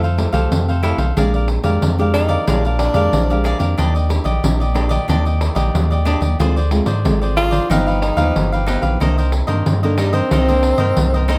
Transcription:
Already playing: F2 F3
0.03 A4 C5 F5, pandeiro
0.17 A3 E4 G4, pandeiro
0.32 C2 A3 G4 A4 C5 F5, pandeiro
0.51 F2 C3, pandeiro
0.68 A4 C5 F5, pandeiro
0.83 A3 E4 G4 A4 C5 F5, pandeiro
0.98 B1 A4 C5 F5, pandeiro
1.16 A#1 A#2 G#3 D4 G4 G#4 A#4 D5 F5, pandeiro
1.34 A#4 D5 F5, pandeiro
1.48 muted cavaquinho stroke, pandeiro
1.63 F2 G#3 D4 G4 A#4 D5 F5, pandeiro
1.82 F2, pandeiro
1.98 G#3 D4 G4 A#4 D5 F5, pandeiro
2.14 D#4 G#4 A#4 D5 F5, pandeiro
2.29 A#4 D5 F5, pandeiro
2.47 A#1 A#2 G#3 D4 G4 G#4 A#4 D5 F5, pandeiro
2.65 A#4 D5 F5, pandeiro
2.79 D4, pandeiro
2.94 F2 G#3 D4 G4 A#4 D5 F5, pandeiro
3.12 A#1 F2, pandeiro
3.30 G#3 D4 G4 A#4 D5 F5, pandeiro
3.44 G#4 A#4 D5 F5, pandeiro
3.59 F2 A#3 D4 G4 A#4 D5 F5, pandeiro
3.78 D#2 D#3 D4 G4 D5 D#5, pandeiro
3.95 G4 D5 D#5, pandeiro
4.09 A#3 D4 G4, muted cavaquinho stroke, pandeiro
4.24 A#1 G4 D5 D#5, pandeiro
4.43 A#1 A#2 A#3 D4 G4, pandeiro
4.60 G4 D5 D#5, pandeiro
4.74 A#3 D4 G4 D5 D#5, pandeiro
4.89 G4 D5 D#5, pandeiro
5.08 D#2 D#3 A#3 D4 G4 D5 D#5, pandeiro
5.25 G4 D5 D#5, pandeiro
5.41 pandeiro
5.55 A#1 A#3 G4 D5 D#5, pandeiro
5.74 D#2 A#2, pandeiro
5.91 G4 D5 D#5, pandeiro
6.05 A#3 D4 G4 D5 D#5, pandeiro
6.21 D#2 G4 D5 D#5, pandeiro
6.39 D2 D3 G#3 C4 F4 G#4 C5 D5, pandeiro
6.56 G#4 C5 D5, pandeiro
6.71 G#3 C4 F4, muted cavaquinho stroke, pandeiro
6.86 G#2 G#4 C5 D5, pandeiro
7.04 G#1 D3 G#3 C4 F4, pandeiro
7.22 G#4 C5 D5, pandeiro
7.36 F4 G#4 C5 D5, pandeiro
7.51 G#4 C5 D5, pandeiro
7.70 G1 G2 F3 B3 D#4 G4 B4 F5, pandeiro
7.87 G4 B4 F5, pandeiro
8.02 D#4, pandeiro
8.17 D#2 F3 B3 D#4 G4 B4 F5, pandeiro
8.36 G1 G2, pandeiro
8.52 G4 B4 F5, pandeiro
8.66 F3 B3 D#4 G4 B4 F5, pandeiro
8.82 A#1 G4 B4 F5, pandeiro
9.00 C2 C3 D#3 A#3 D4 D#4 A#4 C5 D#5, pandeiro
9.18 A#4 C5 D#5, pandeiro
9.32 muted cavaquinho stroke, pandeiro
9.47 G2 D#3 A#3 D4 A#4 C5 D#5, pandeiro
9.66 G2, pandeiro
9.83 D3 D#3 A#3 D4 A#4 C5 D#5, pandeiro
9.97 G3 D#4 A#4 C5 D#5, pandeiro
10.13 C4 A#4 C5 D#5, pandeiro
10.31 C2 C3 D#4 A#4 C5 D#5, pandeiro
10.48 D#3 A#3 D4 A#4 C5 D#5, pandeiro
10.63 pandeiro
10.78 G2 D#3 A#3 A#4 C5 D#5, pandeiro
10.97 C2 G2, pandeiro
11.14 A#4 C5 D#5, pandeiro
11.28 D#3 A#3 D4 D#4 A#4 C5 D#5, pandeiro

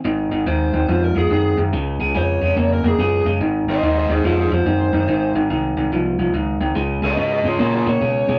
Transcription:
0.04 G#1 G#2 D#3
0.31 G#1 G#2 D#3
0.46 D#2 G#2 D#3 C5
0.73 D#2 G#2 D#3
0.88 F2 G#2 F3
1.04 A#4
1.15 F2 G#2 F3 G#4
1.30 F#2 G#2 D#3 G#4
1.57 F#2 G#2 D#3
1.73 C#2 C#3 G#3
2.00 C#2 C#3 G#3
2.15 F2 C#3 G#3 C#5
2.41 F2 C#3 G#3
2.56 F2 C#3 A#3
2.73 A#4
2.83 F2 C#3 A#3
2.87 G#4
2.97 F#2 C#3 G#3
3.01 G#4
3.25 F#2 C#3 G#3
3.40 G#1 G#2 D#3
3.67 G#1 G#2 D#3 C5
3.71 D#5
3.81 D#2 G#2 D#3 C5 D#5
3.99 C5 D#5
4.08 D#2 G#2 D#3 G#4 C5
4.24 F2 G#2 F3 G#4 C5
4.40 G#4 C5
4.51 F2 G#2 F3 C5
4.65 F#2 G#2 D#3
4.93 F#2 G#2 D#3
5.08 G#1 G#2 D#3
5.35 G#1 G#2 D#3
5.50 C2 G#2 D#3
5.77 C2 G#2 D#3
5.92 C2 G#2 F3
6.19 C2 G#2 F3
6.34 C#2 G#2 D#3
6.61 C#2 G#2 D#3
6.75 C#2 C#3 G#3
7.02 C#2 C#3 G#3 B4 D#5
7.17 G#2 C#3 G#3 B4 D#5
7.33 B4 D#5
7.44 G#2 C#3 G#3 F4 C#5
7.59 A#2 C#3 A#3 F4 C#5
7.75 F4 C#5
7.86 A#2 C#3 A#3 C#5
8.01 B2 C#3 G#3
8.28 B2 C#3 G#3

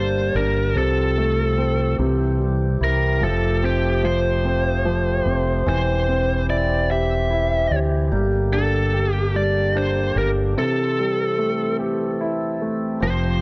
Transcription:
Already playing: G1 G3 A#3 D4 C5 A5
0.35 G1 D4 A#4
0.75 C2 C3 F3 C4 A4
1.18 A3
1.58 C4
1.98 C2 C3 E3 G4
2.40 G3
2.81 C2 E4 A#4
3.20 F1 F3 A3 G4
3.24 A4
3.63 C4 G4
4.04 F3 C5
4.45 C4
4.85 F3
5.25 F1 C4
5.66 E1 E3 C4 C5
6.08 C4
6.49 E4 D5
6.90 G4 E5
7.30 E4
7.71 D2 G4
8.12 G1 D3 G3 A#3 G4
8.53 D4 A4
8.94 G4
9.14 G4
9.35 G3 D5
9.75 D4 C5
10.16 G1 G4 A#4
10.57 C3 E3 C4 A4
10.99 G3
11.38 A3
11.79 G4
12.21 E4
12.62 A3
13.00 F1 F3 C4 G4 C5

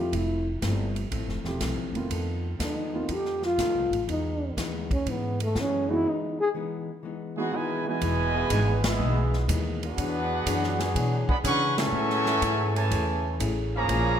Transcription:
Already playing: F2 F3 A3 C4 F4
0.00 E4 G4
0.12 F1 F3 A3 C4 E4, kick, ride
0.62 G1 F3 A3 C4 E4, kick, snare, hi-hat pedal, ride
0.96 ride
1.11 A1 F3 A3 C4 E4, kick, ride
1.27 F1, snare
1.44 E1 F3 A3 C4 E4 G4, snare
1.61 C2 F3 A3 C4 E4, kick, snare, hi-hat pedal, ride
1.76 A1
1.93 F1 D#3 A3 B3 C4 F4, ride
2.10 F2 F3 B3 D#4 A4, kick, ride
2.59 D#2 F3 B3 D#4 A4, kick, snare, hi-hat pedal, ride
2.63 D#4
2.93 D#3 A3 B3 C4 F4
3.09 F2 F3 B3 D#4 A4, kick, ride
3.13 G4
3.25 snare
3.42 F4, snare
3.58 D2 F3 B3 D#4 A4, kick, snare, hi-hat pedal, ride
3.74 C2
3.91 A1, ride
4.07 E2 E3 G#3 B3 D#4, kick, ride
4.11 D#4
4.57 D#2 E3 G#3 B3 D#4, kick, snare, hi-hat pedal, ride
4.91 C#4, kick, ride
5.06 G#2 E3 G#3 B3 D#4, kick, ride
5.12 B3
5.40 A3, ride
5.55 F#2 E3 G#3 B3 D#4, kick, snare, hi-hat pedal
5.60 C#4
5.89 E3 G#3 B3 D#4 E4 F#4
6.04 E3 G#3 B3 D#4
6.09 D#4
6.41 G#4
6.54 E3 G#3 B3 D#4
7.03 E3 G#3 B3 D#4
7.36 E3 G#3 B3 D#4 F#4 G#4 B4 F#5
7.52 B2 D#3 E3 G#3 B3 D#4 E4 B4 D#5 G#5
7.85 B2 E3 G#3 B3 D#4 E4 F#4 B4 D#5 G#5
8.01 E1 E3 G#3 B3 D#4, kick, ride
8.33 E3 B3 E4 G#4
8.50 G#1 E3 G#3 B3 D#4, kick, hi-hat pedal, ride
8.83 G#3 B3 E4 G#4 D#5 E5, snare, ride
8.99 B1 E3 G#3 B3 D#4
9.33 snare
9.48 D#2 E3 G#3 B3 D#4, kick, hi-hat pedal, ride
9.82 B3 D4 F#4 G#4 B4 F#5, ride
9.97 E2 E3 D4 G#4 C#5, kick, ride
10.46 F#2 E3 D4 G#4 C#5, kick, hi-hat pedal, ride
10.63 snare
10.79 F#3 D4 G#4 C#5, snare, ride
10.95 B2 E3 D4 G#4 C#5, kick, ride
11.27 D3 G#3 B3 G#4 D5 F#5 B5, muted upright bass stroke, kick
11.42 C#3 D3 E3 G#3 C#4 D4 G#4 B4 F#5 G#5 C#6, kick, hi-hat pedal, ride
11.46 C#5
11.76 E3 F#3 C#4 A4 E5 G#5 C#6, snare, ride
11.92 A2 A3 C#4 E4
11.96 G#4
12.10 snare
12.26 E3 C#4 E4 A4, snare
12.42 G#2 A3 C#4 E4 G#4, kick, hi-hat pedal, ride
12.73 C#3 E3 A3 E4 C#5 G#5 A5, ride
12.91 E2 A3 C#4 E4 G#4, kick, ride
13.40 A1 A3 C#4 E4 G#4, kick, hi-hat pedal, ride
13.75 C#3 F3 A#3 G#4 C#5 F5 A#5
13.87 A#1 A#2 F3 G#3 A#3 C#4 G#4, kick, ride
13.92 F4

